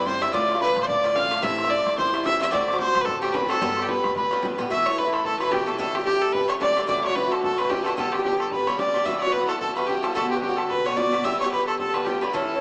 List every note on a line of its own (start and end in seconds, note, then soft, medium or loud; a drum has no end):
0.00 0.23 G2 medium
0.05 0.20 G2 soft
0.05 0.20 D3 soft
0.05 0.21 C4 medium
0.05 0.22 E4 medium
0.05 0.24 C5 medium
0.05 0.24 C6 medium
0.05 bodhran medium
0.21 0.32 G2 medium
0.21 0.32 D3 medium
0.21 0.33 C4 medium
0.21 0.34 E4 medium
0.21 0.33 E5 medium
0.21 0.36 E6 medium
0.21 bodhran medium
0.33 0.68 D2 medium
0.33 0.55 A2 medium
0.33 0.55 D3 medium
0.33 0.54 A3 medium
0.33 0.53 F4 medium
0.33 0.59 D5 medium
0.33 0.62 D6 medium
0.33 bodhran medium
0.49 bodhran medium
0.54 1.03 D3 soft
0.54 1.04 A3 medium
0.54 1.03 F4 soft
0.54 bodhran soft
0.61 0.81 B4 loud
0.61 0.85 B5 medium
0.61 bodhran medium
0.76 0.86 A1 medium
0.76 bodhran medium
0.82 0.87 C5 medium
0.82 0.88 C6 medium
0.88 1.32 A1 medium
0.88 1.17 D5 medium
0.88 1.14 D6 loud
0.88 bodhran medium
1.03 1.14 A2 soft
1.03 1.15 D3 medium
1.03 1.16 A3 medium
1.03 1.16 F4 medium
1.03 bodhran soft
1.15 1.29 A2 soft
1.15 1.30 D3 medium
1.15 1.31 A3 medium
1.15 1.32 F4 medium
1.15 1.37 F5 loud
1.15 1.36 F6 medium
1.15 bodhran medium
1.31 1.42 A2 medium
1.31 1.42 D3 medium
1.31 1.42 A3 medium
1.31 1.43 F4 medium
1.31 bodhran medium
1.37 1.44 F5 medium
1.42 1.78 A1 medium
1.42 1.64 C3 medium
1.42 1.64 E3 medium
1.42 1.64 A3 medium
1.42 1.63 E4 medium
1.42 1.71 E5 loud
1.42 1.72 E6 medium
1.42 bodhran medium
1.58 bodhran medium
1.64 2.12 E3 soft
1.64 2.13 A3 medium
1.64 2.13 E4 medium
1.64 bodhran medium
1.70 1.97 D5 loud
1.70 1.85 D6 medium
1.70 bodhran medium
1.86 1.95 E2 medium
1.86 1.99 D6 medium
1.86 bodhran medium
1.97 2.42 E2 medium
1.97 2.23 C5 medium
1.97 2.27 C6 medium
1.97 bodhran medium
2.13 2.23 C3 medium
2.13 2.24 E3 medium
2.13 2.25 A3 medium
2.13 2.25 E4 medium
2.13 bodhran medium
2.24 2.39 C3 medium
2.24 2.40 E3 soft
2.24 2.40 A3 soft
2.24 2.41 E4 medium
2.24 2.39 E5 loud
2.24 2.41 E6 medium
2.24 bodhran medium
2.40 2.51 C3 medium
2.40 2.51 E3 medium
2.40 2.52 A3 medium
2.40 2.53 E4 medium
2.40 2.52 E5 medium
2.40 bodhran medium
2.51 2.87 D2 loud
2.51 2.73 A2 medium
2.51 2.73 D3 medium
2.51 2.73 C4 medium
2.51 2.72 F#4 medium
2.51 2.78 D5 medium
2.51 2.66 D6 medium
2.51 bodhran medium
2.68 2.80 D6 medium
2.68 bodhran medium
2.73 3.21 D3 soft
2.73 3.22 C4 soft
2.73 3.22 F#4 medium
2.73 bodhran medium
2.79 3.02 C5 loud
2.79 3.02 C6 medium
2.79 bodhran medium
2.95 3.05 A1 medium
2.95 bodhran medium
3.01 3.06 B4 medium
3.01 3.07 B5 medium
3.05 3.51 A1 medium
3.05 3.20 A4 loud
3.05 3.24 A5 medium
3.05 bodhran medium
3.21 3.32 A2 medium
3.21 3.33 D3 soft
3.21 3.34 C4 medium
3.21 3.34 F#4 medium
3.21 3.34 G4 medium
3.21 3.37 G5 medium
3.21 bodhran medium
3.33 3.47 A2 medium
3.33 3.49 D3 medium
3.33 3.49 C4 medium
3.33 3.50 F#4 medium
3.33 3.48 B4 medium
3.33 3.52 B5 medium
3.33 bodhran loud
3.49 3.61 A2 medium
3.49 3.60 D3 medium
3.49 3.62 C4 medium
3.49 3.62 F#4 medium
3.49 3.83 A4 medium
3.49 3.85 A5 medium
3.49 bodhran medium
3.61 3.96 G1 loud
3.61 3.82 G2 medium
3.61 3.83 D3 medium
3.61 3.82 B3 medium
3.61 3.81 G4 medium
3.61 bodhran medium
3.77 bodhran medium
3.82 4.31 D3 soft
3.82 4.31 B3 soft
3.82 3.90 G4 medium
3.82 4.31 G4 soft
3.82 3.91 G5 medium
3.88 4.15 B4 medium
3.88 4.16 B5 medium
3.88 bodhran medium
4.04 4.14 D2 medium
4.04 bodhran medium
4.15 4.38 D2 medium
4.15 4.56 B4 medium
4.15 4.47 B5 medium
4.15 bodhran medium
4.31 4.41 G2 medium
4.31 4.43 D3 medium
4.31 4.43 B3 medium
4.31 4.44 G4 medium
4.31 bodhran medium
4.43 4.57 G1 medium
4.43 4.57 G2 medium
4.43 4.58 D3 soft
4.43 4.59 B3 soft
4.43 4.59 G4 medium
4.43 bodhran medium
4.58 4.69 A1 medium
4.58 4.69 G2 medium
4.58 4.70 D3 medium
4.58 4.70 B3 medium
4.58 4.71 G4 medium
4.58 bodhran medium
4.70 4.91 B2 medium
4.70 4.92 E3 medium
4.70 4.91 A3 medium
4.70 4.90 E4 medium
4.70 4.88 E5 medium
4.70 4.88 E6 medium
4.70 bodhran medium
4.86 5.00 C#5 medium
4.86 5.00 C#6 medium
4.86 bodhran medium
4.91 5.06 E3 soft
4.91 5.05 A3 soft
4.91 5.04 E4 medium
4.98 5.09 B4 medium
4.98 5.27 B5 medium
4.98 bodhran medium
5.05 5.39 E3 soft
5.05 5.41 A3 soft
5.05 5.40 E4 soft
5.05 bodhran soft
5.09 5.24 A4 medium
5.09 5.15 B4 medium
5.14 bodhran medium
5.25 5.39 A4 medium
5.25 5.43 A5 medium
5.25 bodhran medium
5.39 5.50 B2 soft
5.39 5.50 E3 medium
5.39 5.51 A3 medium
5.39 5.52 E4 medium
5.39 5.53 B4 medium
5.39 5.54 B5 medium
5.39 bodhran medium
5.51 5.65 B2 soft
5.51 5.66 E3 soft
5.51 5.67 A3 medium
5.51 5.67 E4 medium
5.51 5.68 G4 medium
5.51 5.67 G5 medium
5.51 bodhran medium
5.66 5.78 B2 medium
5.66 5.79 E3 medium
5.66 5.78 A3 medium
5.66 5.80 E4 medium
5.66 5.78 A4 medium
5.66 5.78 A5 medium
5.78 6.00 A2 medium
5.78 6.00 D3 medium
5.78 5.99 A3 medium
5.78 5.98 G4 medium
5.78 5.96 A4 medium
5.78 5.97 A5 medium
5.78 bodhran medium
5.95 6.04 G4 medium
5.95 6.06 G5 medium
5.95 bodhran medium
5.99 6.14 D3 soft
5.99 6.13 A3 soft
5.99 6.12 G4 medium
6.05 6.23 G4 loud
6.05 6.23 G5 medium
6.05 bodhran medium
6.13 6.48 D3 soft
6.13 6.48 A3 soft
6.13 6.49 G4 medium
6.22 6.34 A4 medium
6.22 6.34 A5 medium
6.33 6.48 B4 loud
6.33 6.51 B5 medium
6.33 bodhran medium
6.48 6.59 A2 medium
6.48 6.60 D3 medium
6.48 6.60 A3 medium
6.48 6.61 G4 medium
6.48 6.54 C#5 medium
6.48 6.64 C#6 medium
6.48 bodhran medium
6.60 6.75 A2 medium
6.60 6.76 D3 medium
6.60 6.76 A3 soft
6.60 6.77 G4 medium
6.60 6.86 D5 loud
6.60 6.89 D6 medium
6.60 bodhran medium
6.76 6.86 A2 medium
6.76 6.87 D3 medium
6.76 6.87 A3 medium
6.76 6.89 G4 medium
6.76 bodhran medium
6.87 7.09 A2 medium
6.87 7.10 D3 medium
6.87 7.09 A3 medium
6.87 7.08 F#4 medium
6.87 7.03 D5 medium
6.87 7.07 D6 medium
6.87 bodhran medium
7.04 7.17 C#5 loud
7.04 7.18 C#6 medium
7.04 bodhran medium
7.09 7.24 D3 soft
7.09 7.23 A3 soft
7.09 7.21 F#4 soft
7.16 7.33 B4 medium
7.16 7.34 B5 medium
7.16 bodhran medium
7.22 7.58 D3 soft
7.22 7.59 A3 soft
7.22 7.58 F#4 soft
7.22 bodhran soft
7.31 7.42 A4 medium
7.31 7.43 A5 medium
7.31 bodhran medium
7.43 7.60 A4 medium
7.43 7.54 A5 medium
7.43 bodhran medium
7.55 7.68 A2 medium
7.55 7.71 B4 medium
7.55 7.61 C#6 medium
7.59 7.69 D3 medium
7.59 7.70 A3 medium
7.59 7.71 F#4 medium
7.59 7.72 B5 medium
7.59 bodhran medium
7.69 7.84 A2 medium
7.69 7.85 D3 medium
7.69 7.85 A3 medium
7.69 7.86 F#4 medium
7.69 7.81 G4 medium
7.69 7.86 G5 medium
7.69 bodhran medium
7.82 7.97 A2 medium
7.82 7.96 A4 medium
7.82 7.86 B4 medium
7.86 7.96 D3 medium
7.86 7.98 A3 medium
7.86 7.98 F#4 medium
7.86 7.97 A5 medium
7.86 bodhran medium
7.97 8.19 G2 medium
7.97 8.19 D3 medium
7.97 8.18 B3 medium
7.97 8.18 G4 medium
7.97 8.13 A4 medium
7.97 8.14 A5 medium
7.97 bodhran medium
8.11 8.23 G4 medium
8.11 8.24 G5 medium
8.11 bodhran medium
8.19 8.33 D3 soft
8.19 8.32 B3 soft
8.19 8.31 G4 medium
8.24 8.39 G4 medium
8.24 8.42 G5 medium
8.24 bodhran medium
8.32 8.67 D3 soft
8.32 8.68 B3 soft
8.32 8.67 G4 medium
8.32 bodhran soft
8.40 8.51 A4 medium
8.40 8.54 A5 medium
8.40 bodhran medium
8.51 8.68 B4 medium
8.51 8.81 B5 medium
8.51 bodhran medium
8.67 8.78 G2 medium
8.67 8.78 D3 medium
8.67 8.79 B3 medium
8.67 8.80 G4 medium
8.67 8.78 C#5 medium
8.67 bodhran medium
8.79 8.92 G2 medium
8.79 8.94 D3 soft
8.79 8.94 B3 medium
8.79 8.95 G4 medium
8.79 9.07 D5 medium
8.79 9.08 D6 medium
8.79 bodhran medium
8.94 9.04 G2 soft
8.94 9.06 D3 medium
8.94 9.05 B3 medium
8.94 9.07 G4 medium
8.94 bodhran soft
9.05 9.27 G2 medium
9.05 9.28 E3 medium
9.05 9.27 B3 medium
9.05 9.25 F#4 medium
9.05 9.17 E5 medium
9.05 9.24 E6 medium
9.05 bodhran medium
9.19 9.34 C#5 medium
9.19 9.22 D5 medium
9.19 9.35 C#6 medium
9.19 bodhran soft
9.27 9.41 E3 soft
9.27 9.40 B3 soft
9.27 9.39 F#4 medium
9.32 9.47 B4 medium
9.32 9.50 B5 medium
9.32 bodhran medium
9.40 9.75 E3 soft
9.40 9.77 B3 soft
9.40 9.76 F#4 medium
9.40 bodhran soft
9.48 9.59 A4 medium
9.48 9.60 A5 medium
9.48 bodhran medium
9.60 9.74 A4 medium
9.60 9.78 A5 medium
9.60 bodhran medium
9.75 9.86 G2 medium
9.75 9.87 E3 medium
9.75 9.88 B3 medium
9.75 9.88 F#4 medium
9.75 9.88 B4 medium
9.75 9.88 B5 medium
9.75 bodhran medium
9.87 10.02 G2 soft
9.87 10.02 E3 medium
9.87 10.03 B3 soft
9.87 10.04 F#4 medium
9.87 10.04 G4 medium
9.87 10.06 G5 medium
9.87 bodhran medium
10.03 10.14 G2 medium
10.03 10.15 E3 medium
10.03 10.14 B3 medium
10.03 10.15 F#4 medium
10.03 10.14 A4 medium
10.03 10.15 A5 medium
10.03 bodhran medium
10.14 10.36 B2 medium
10.14 10.36 D3 medium
10.14 10.35 B3 medium
10.14 10.34 F#4 medium
10.14 10.29 A4 medium
10.14 10.33 A5 medium
10.14 bodhran medium
10.30 10.41 G4 medium
10.30 10.42 G5 medium
10.30 bodhran soft
10.35 10.50 D3 soft
10.35 10.49 B3 soft
10.35 10.47 F#4 medium
10.41 10.58 G4 medium
10.41 10.60 G5 medium
10.41 bodhran medium
10.49 10.84 D3 soft
10.49 10.85 B3 soft
10.49 10.85 F#4 medium
10.49 bodhran soft
10.57 10.67 A4 medium
10.57 10.72 A5 medium
10.57 bodhran medium
10.67 10.70 A4 medium
10.67 10.87 B4 medium
10.67 10.87 B5 medium
10.67 bodhran medium
10.85 10.95 B2 medium
10.85 10.96 D3 medium
10.85 10.96 B3 medium
10.85 10.97 F#4 medium
10.85 10.98 C#5 medium
10.85 10.99 C#6 medium
10.85 bodhran medium
10.96 11.10 B2 medium
10.96 11.11 D3 medium
10.96 11.12 B3 medium
10.96 11.13 F#4 medium
10.96 11.25 D5 medium
10.96 11.27 D6 medium
10.96 bodhran medium
11.11 11.23 B2 medium
11.11 11.23 D3 medium
11.11 11.24 B3 medium
11.11 11.25 F#4 medium
11.11 bodhran medium
11.24 11.46 G2 medium
11.24 11.46 D3 medium
11.24 11.46 B3 medium
11.24 11.44 G4 medium
11.24 11.39 E5 medium
11.24 11.41 E6 medium
11.24 bodhran medium
11.40 11.51 C#5 medium
11.40 bodhran medium
11.46 11.60 D3 soft
11.46 11.59 B3 medium
11.46 11.57 G4 soft
11.51 11.66 B4 medium
11.51 11.67 B5 medium
11.51 bodhran medium
11.58 11.93 D3 soft
11.58 11.94 B3 soft
11.58 11.94 G4 medium
11.58 bodhran soft
11.67 11.78 A4 medium
11.67 11.79 A5 medium
11.67 bodhran medium
11.79 11.95 A4 medium
11.79 12.08 A5 medium
11.79 bodhran medium
11.94 12.05 G2 medium
11.94 12.05 D3 medium
11.94 12.06 B3 medium
11.94 12.07 G4 medium
11.94 12.06 B4 medium
11.94 bodhran medium
12.04 12.20 G2 soft
12.04 12.21 D3 medium
12.04 12.22 B3 medium
12.04 12.23 G4 medium
12.04 12.23 G4 soft
12.04 12.24 G5 medium
12.04 bodhran medium
12.21 12.33 G2 medium
12.21 12.33 D3 medium
12.21 12.34 B3 medium
12.21 12.34 G4 medium
12.21 12.33 B4 medium
12.21 12.36 B5 medium
12.21 bodhran medium
12.33 12.55 A2 medium
12.33 12.56 E3 medium
12.33 12.54 C#4 medium
12.33 12.54 E4 medium
12.33 12.61 A4 medium
12.33 12.61 A5 medium
12.33 bodhran medium
12.55 12.61 E3 soft
12.55 12.61 C#4 soft
12.55 12.61 E4 soft